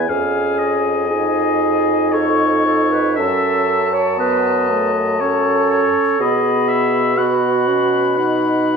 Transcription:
Already playing: oboe G#5
0.08 bassoon F2, french horn C#4, clarinet G#4, oboe F5, flute G#5
0.58 oboe D#5
1.10 french horn D#4, clarinet G#4, flute G#5
2.12 clarinet A4, oboe C#5, flute C#6
2.65 clarinet A4
2.92 clarinet B4
3.16 bassoon F#2, french horn C#4, clarinet A4, oboe E5, flute A5
3.93 clarinet C#5
4.17 french horn B3, clarinet B4, oboe D#5
4.69 french horn A3
5.20 french horn C#4, clarinet A4, oboe C#5
5.70 oboe C#5
6.20 bassoon B2, french horn B3, clarinet G#4, oboe D#5, flute B5
6.68 oboe E5
7.18 french horn B3, clarinet F#4, oboe F#5, flute B5
7.68 french horn C#4
8.16 french horn D#4, oboe F#5

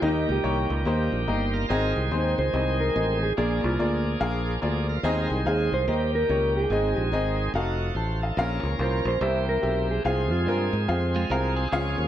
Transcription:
0.02 fingered electric bass D#2, grand piano D#3 A#3 D#4 G4 D#5, tonewheel organ D#3 G3 A#3 F4, clean electric guitar D#4
0.08 tonewheel organ G4
0.29 fingered electric bass C#2, clean electric guitar G4
0.44 fingered electric bass C2, grand piano A#3 D#4 G4 C#5
0.70 fingered electric bass C#2
0.85 fingered electric bass D#2, grand piano A#3 D#4 G4 C5
1.12 fingered electric bass A#1
1.28 fingered electric bass G1, grand piano A#3 D#4 G4 D#5, tonewheel organ G4 C5
1.54 tonewheel organ F4 A#4
1.69 fingered electric bass G#1, grand piano G#2 C4 D#4 G#4 D#5, tonewheel organ D#3 G#3 C4 G#4
1.96 fingered electric bass C2
2.11 fingered electric bass D#2, grand piano C4 D#4 G#4 C5, clean electric guitar C5
2.38 fingered electric bass C#2, clean electric guitar C5
2.53 fingered electric bass C2, grand piano C4 D#4 G#4 D#5
2.80 clean electric guitar A#4
2.95 fingered electric bass A1, grand piano C4 D#4 G#4 D#5
3.23 clean electric guitar G#4
3.37 fingered electric bass A#1, grand piano A#2 A#3 F4 G#4 D5, tonewheel organ F3 A#3 D4 G#4, clean electric guitar G#4
3.64 fingered electric bass C2, clean electric guitar F4
3.79 fingered electric bass D2, grand piano A#3 F4 G#4 D5
4.20 fingered electric bass A#1, grand piano A#3 F4 G#4 F5
4.61 fingered electric bass D2, grand piano A#3 F4 G#4 D5, tonewheel organ D4 G#4
4.89 tonewheel organ F4 A#4
5.03 fingered electric bass D#2, grand piano D#3 C4 D#4 G#4 D#5, tonewheel organ D#3 G#3 C4 G#4
5.30 fingered electric bass C2
5.46 fingered electric bass D#2, grand piano C4 D#4 G#4 F5, clean electric guitar G#4
5.72 fingered electric bass C2, clean electric guitar C5
5.87 fingered electric bass D#2, tonewheel organ D#3 G3 A#3 F4, grand piano D#3 A#3 D#4 G4 D#5
5.93 tonewheel organ G4
6.15 clean electric guitar A#4
6.29 fingered electric bass C#2, grand piano A#3 D#4 G4 C#5
6.57 clean electric guitar G#4
6.70 fingered electric bass G#1, grand piano G#2 C4 D#4 G#4 D#5, tonewheel organ D#3 G#3 C4 G#4
6.95 fingered electric bass A#1, clean electric guitar G4
7.12 fingered electric bass G#1, grand piano C4 D#4 G#4 D#5
7.54 fingered electric bass F1, tonewheel organ F3 A3 D#4 F#4, grand piano D#4 F#4 A4 F5
7.95 fingered electric bass A1, tonewheel organ F#4 C5, grand piano A5
8.22 tonewheel organ D#4 A4, grand piano F5
8.37 fingered electric bass A#1, grand piano A#2 C#4 F4 A#4 F5, tonewheel organ F3 A#3 C4 A#4
8.42 tonewheel organ C#4
8.63 fingered electric bass C#2
8.79 fingered electric bass C2, grand piano C#4 F4 A#4 C5, clean electric guitar C5
9.05 fingered electric bass A#1, clean electric guitar C5
9.21 fingered electric bass C2, grand piano C3 C4 G4 A#4 E5, tonewheel organ E3 A#3 C4 G4
9.49 clean electric guitar A#4
9.62 fingered electric bass B1, grand piano C4 G4 A#4 E5
9.91 clean electric guitar G#4
10.04 fingered electric bass C2, grand piano C3 C4 F4 G#4 F5, tonewheel organ F3 G#3 C4 G#4, clean electric guitar G#4
10.31 fingered electric bass F2, clean electric guitar F4
10.46 fingered electric bass G2, grand piano C4 F4 G#4 A#4
10.73 fingered electric bass G#2
10.88 fingered electric bass F2, grand piano C4 F4 G#4 F5
11.16 clean electric guitar G#3 F4
11.30 fingered electric bass C2, grand piano C4 F4 G#4 F5, clean electric guitar A#4
11.57 clean electric guitar C4 G#4
11.71 fingered electric bass C#2, grand piano C#3 C#4 F4 G#4 F5, tonewheel organ F3 G#3 C#4 G#4
11.98 fingered electric bass D#2

